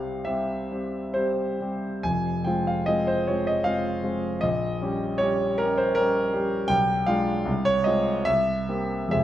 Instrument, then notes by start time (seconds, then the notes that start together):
grand piano
Already playing: C2 G3 C4 G4 F5
0.25 G3 C4 G4 E5
0.71 G3 C4 G4
1.14 G3 C4 G4 C5
1.60 G3 C4 G4
2.03 F1 F2 G#5
2.44 G#3 C4 F4 G5
2.67 F5
2.86 G#3 C4 F4 D#5
3.07 C5
3.27 G#3 C4 F4 C#5
3.47 D#5
3.64 G#3 C4 F4 F5
4.04 G#3 C4 F4
4.41 A#1 D#5
4.81 G3 C#4 G4
5.18 G3 C#4 G4 C#5
5.58 G3 C#4 G4 A#4
5.78 C5
5.95 G3 C#4 G4 A#4
6.33 G3 C#4 G4
6.68 B1 G5
7.06 G#3 D4 F4 F5
7.46 C2
7.65 C#5
7.84 G#3 C4 F4 D#5
8.25 C2 E5
8.69 A#3 C4 G4
9.09 F1 F2 G#3 C4 G#4 E5